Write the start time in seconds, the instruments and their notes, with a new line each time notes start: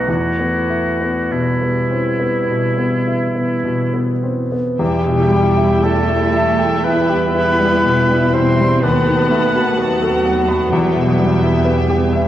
Already playing: french horn section A3, grand piano B3, clarinet D#4
0.08 grand piano E2, clarinet E4, french horn section E4, oboe F#4
0.39 grand piano B3
0.70 grand piano E4
1.01 grand piano B3
1.32 grand piano B2, french horn section G3, oboe E4
1.62 grand piano B3
1.91 grand piano C4
2.20 grand piano B3
2.49 grand piano B2
2.78 grand piano B3
3.08 grand piano E4
3.36 grand piano B3
3.64 grand piano B2
3.94 grand piano B3
4.23 grand piano C4
4.52 grand piano B3
4.79 grand piano E2, double bass section E2, french horn section G3 E4, cello section G3, viola section E4, clarinet G4, violin section E5 G5, flute G5
5.06 grand piano B2
5.31 grand piano G3
5.57 grand piano E4
5.82 cello section A3, grand piano G4, clarinet A4, flute A5
6.09 grand piano E4
6.34 grand piano E5
6.59 grand piano G5
6.84 french horn section G3 E4, cello section B3, clarinet B4, grand piano E5, flute B5
7.09 grand piano G4
7.35 grand piano E4
7.60 grand piano G3
7.84 grand piano B2
8.10 grand piano G3
8.33 grand piano B2, cello section C4, clarinet C5, flute C6
8.60 grand piano G3
8.83 double bass section D#2, grand piano D#2, french horn section A3 F#4, cello section B3, viola section B3, clarinet B4, violin section F#5 A5, flute B5
9.07 grand piano D#3
9.31 grand piano A3
9.55 grand piano F#4
9.77 cello section F#3, french horn section A3 F#4, clarinet F#4, grand piano B4, flute F#5
10.02 grand piano A4
10.26 grand piano F#5
10.49 grand piano B5
10.73 grand piano E2, double bass section E2, french horn section G3 E4, violin section E5 G5
10.96 grand piano B2
11.19 grand piano G3
11.43 grand piano E4
11.65 grand piano B4
11.90 grand piano G4
12.13 grand piano E5